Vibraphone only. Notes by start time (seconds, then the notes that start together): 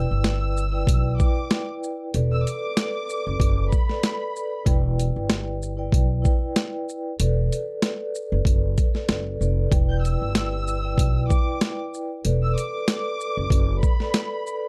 Already playing: E4 B4 D5 G5
0.72 E4 B4 D5 G5
1.16 E4 B4 D5 G5
2.14 A4 B4 D5
2.77 A4 B4 D5
3.88 A4 B4 D5
4.34 A4 B4 D5
4.65 E4 B4 D5 G5
5.77 E4 B4 D5 G5
6.22 E4 B4 D5 G5
7.19 A4 B4 D5
7.82 A4 B4 D5
8.94 A4 B4 D5
9.40 A4 B4 D5
9.70 E4 B4 D5 G5
10.83 E4 B4 D5 G5
11.27 E4 B4 D5 G5
12.24 A4 B4 D5
13.99 A4 B4 D5
14.45 A4 B4 D5